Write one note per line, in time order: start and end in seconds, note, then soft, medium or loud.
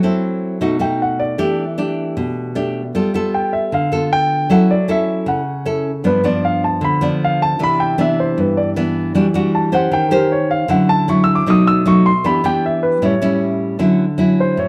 0.00 0.59 F#3 medium
0.00 0.60 C4 medium
0.00 0.60 E4 medium
0.04 0.60 A4 medium
0.61 1.37 B2 medium
0.61 0.77 A3 medium
0.61 0.77 D#4 medium
0.61 0.78 F#4 medium
0.79 1.35 A3 medium
0.79 1.35 D#4 medium
0.79 1.35 F#4 medium
0.79 1.00 G5 medium
1.02 1.20 F#5 medium
1.20 1.74 D5 medium
1.38 2.14 E3 medium
1.38 1.64 A3 medium
1.38 1.64 D4 medium
1.38 1.64 G4 medium
1.78 2.52 A3 medium
1.78 2.52 D4 medium
1.78 2.52 G4 medium
2.17 2.92 B2 medium
2.55 2.81 A3 medium
2.55 2.81 D4 medium
2.55 2.82 G4 medium
2.95 3.70 G3 medium
2.95 3.10 B3 medium
2.95 3.11 F4 medium
2.95 3.11 A4 medium
3.14 3.88 B3 medium
3.14 3.88 F4 medium
3.14 3.89 A4 medium
3.34 3.52 G5 medium
3.53 3.71 E5 medium
3.72 4.47 D3 medium
3.72 4.09 F5 medium
3.92 4.46 B3 medium
3.92 4.47 F4 medium
3.92 4.47 A4 medium
4.13 4.48 G5 loud
4.50 5.25 F#3 medium
4.50 4.74 C#4 medium
4.50 4.75 E4 medium
4.50 4.75 A4 medium
4.50 4.69 F#5 medium
4.71 4.88 D5 medium
4.88 5.40 C#4 medium
4.88 5.40 E4 medium
4.88 5.40 A4 medium
4.88 5.26 E5 medium
5.26 6.02 C#3 medium
5.26 5.63 F#5 medium
5.65 5.90 C#4 medium
5.65 5.91 E4 medium
5.65 5.91 A4 medium
6.04 6.80 G2 medium
6.04 6.20 F3 medium
6.04 6.20 B3 medium
6.04 6.21 D4 medium
6.04 6.24 B4 medium
6.24 6.98 F3 medium
6.24 6.98 B3 medium
6.24 6.99 D4 medium
6.24 6.43 D5 medium
6.45 6.63 F5 medium
6.64 6.82 A5 medium
6.81 7.57 D3 medium
6.81 7.02 B5 medium
7.01 7.56 F3 medium
7.01 7.56 B3 medium
7.01 7.57 D4 medium
7.01 7.21 D5 medium
7.24 7.41 F5 medium
7.42 7.60 A5 medium
7.59 8.35 C3 medium
7.59 7.95 E3 medium
7.59 7.95 B3 medium
7.59 7.95 D4 medium
7.63 7.80 B5 loud
7.80 7.98 G5 medium
7.98 8.72 E3 medium
7.98 8.73 B3 medium
7.98 8.73 D4 medium
7.98 8.18 E5 medium
8.20 8.37 C5 medium
8.38 9.13 G2 medium
8.38 8.57 B4 medium
8.57 8.69 D5 medium
8.76 9.13 E3 medium
8.76 9.13 B3 medium
8.76 9.13 D4 medium
9.15 9.90 E3 medium
9.15 9.26 G3 medium
9.15 9.26 D4 medium
9.15 9.26 F#4 medium
9.34 9.70 G3 medium
9.34 9.70 D4 medium
9.34 9.70 F#4 medium
9.55 9.73 A5 medium
9.72 10.08 C#4 medium
9.72 10.08 G4 medium
9.72 10.08 C5 medium
9.72 9.92 F#5 medium
9.91 10.67 D#3 medium
9.91 10.11 G5 medium
10.09 10.66 C#4 medium
10.09 10.66 G4 medium
10.09 10.11 A4 soft
10.09 10.67 C5 medium
10.13 10.31 A#4 medium
10.32 10.50 C#5 medium
10.51 10.69 F5 medium
10.68 11.44 D3 medium
10.68 11.05 F#3 medium
10.68 11.05 C#4 medium
10.68 11.05 E4 medium
10.68 10.89 F#5 medium
10.89 11.08 A5 loud
11.08 11.45 F#3 medium
11.08 11.45 C#4 medium
11.08 11.46 E4 medium
11.08 11.21 C#6 medium
11.24 11.35 E6 medium
11.35 11.47 D6 medium
11.46 12.22 B2 medium
11.46 11.82 F#3 medium
11.46 11.83 A3 medium
11.46 11.83 D#4 medium
11.46 11.67 D#6 medium
11.67 11.86 E6 medium
11.86 12.11 F#3 medium
11.86 12.11 A3 medium
11.86 12.11 D#4 medium
11.86 12.05 C#6 medium
12.06 12.24 C6 medium
12.24 13.00 E3 medium
12.24 12.41 B3 medium
12.24 12.41 D4 medium
12.24 12.41 G4 medium
12.24 12.44 B5 medium
12.44 13.00 B3 medium
12.44 13.01 D4 medium
12.44 13.01 G4 medium
12.44 12.63 G5 medium
12.66 12.83 E5 medium
12.83 13.01 B4 medium
13.02 13.77 A2 medium
13.02 13.13 G3 medium
13.02 13.14 C#4 medium
13.02 13.14 E4 medium
13.02 13.40 C#5 medium
13.22 13.76 G3 medium
13.22 13.76 C#4 medium
13.22 13.77 E4 medium
13.79 14.55 D3 medium
13.79 14.04 F#3 medium
13.79 14.04 C#4 medium
13.79 14.04 E4 medium
14.18 14.68 F#3 medium
14.18 14.68 C#4 medium
14.18 14.68 E4 medium
14.40 14.58 C5 medium
14.57 14.68 A2 medium
14.57 14.68 C#5 medium